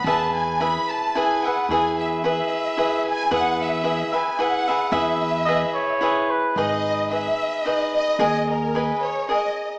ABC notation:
X:1
M:3/4
L:1/16
Q:"Swing" 1/4=110
K:E
V:1 name="Violin section"
a2 g2 b2 a2 g2 f2 | g2 e2 e6 g2 | f2 e4 g2 f4 | e8 z4 |
[K:G#m] d4 e4 d2 d2 | d2 A2 B2 c2 d3 z |]
V:2 name="Trumpet"
z12 | z12 | z12 | z4 d2 c4 B2 |
[K:G#m] z12 | z12 |]
V:3 name="Cavaquinho"
[EGBe]4 [EGBe]4 [EGBe]2 [GBe]2 | [EGBe]4 [EGBe]4 [EGBe]4 | [EGBe]4 [EGBe]2 [GBe]2 [EGBe]2 [GBe]2 | [EGBe]4 [EGBe]4 [EGBe]4 |
[K:G#m] [DGBd]4 [GB]4 [DGBd]4 | [GAdg]4 [GAdg]4 [GAdg]4 |]
V:4 name="Upright bass" clef=bass
E,,8 z4 | E,,8 z4 | E,,8 z4 | E,,8 z4 |
[K:G#m] G,,,8 z4 | D,,8 z4 |]